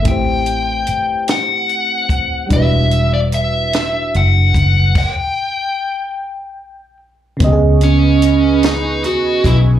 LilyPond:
<<
  \new Staff \with { instrumentName = "Analog synth pad" } { \time 6/8 \key e \major \tempo 4. = 49 r2. | r2. | r2. | <b' dis'' gis'' cis'''>2. | }
  \new Staff \with { instrumentName = "Lead electric guitar" } { \time 6/8 \key e \major g''4. fis''4. | e''8. d''16 e''4 fis''4 | g''2~ g''8 r8 | r8 cis'4 dis'8 fis'8 e'8 | }
  \new Staff \with { instrumentName = "FM electric piano" } { \time 6/8 \key e \major <a c' e' g' c''>2. | <g d' e' fis' b'>2. | r2. | <cis b cis' g' gis' dis''>2. | }
  \new Staff \with { instrumentName = "Fingered electric bass" } { \clef bass \time 6/8 \key e \major a,,4 r2 | e,,2 fis,,8 fis,,8 | r2. | cis,2 dis,8 b,,8 | }
  \new DrumStaff \with { instrumentName = "Drums" } \drummode { \time 6/8 <hh bd>8 hh8 hh8 <hh sn>8 hh8 <hh bd>8 | <hh bd>8 hh8 hh8 <hh sn>8 hh8 <hh bd>8 | <cymc bd>4. r4. | <hh bd>8 hh8 hh8 <hh sn>8 hh8 <hh bd>8 | }
>>